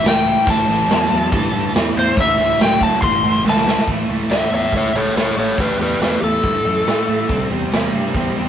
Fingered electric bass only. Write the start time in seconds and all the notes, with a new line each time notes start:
0.04 C#2
0.47 A1
0.69 A1
0.91 E2
1.12 E2
1.32 G2
1.53 G2
1.75 E2
1.96 E2
2.17 D2
2.38 D2
2.59 C#2
2.81 C#2
3.03 G1
3.23 G1
3.45 C#2
3.88 A1
4.08 C#2
4.29 D2
4.52 E2
4.73 C#2
4.94 C#2
5.15 C#2
5.36 A1
5.58 A1
5.78 E2
5.99 E2
6.22 E2
6.44 G2
6.65 F#2
6.87 A2
7.08 A2
7.29 C2
7.50 E2
7.72 E2
7.94 G2
8.15 E2
8.36 E2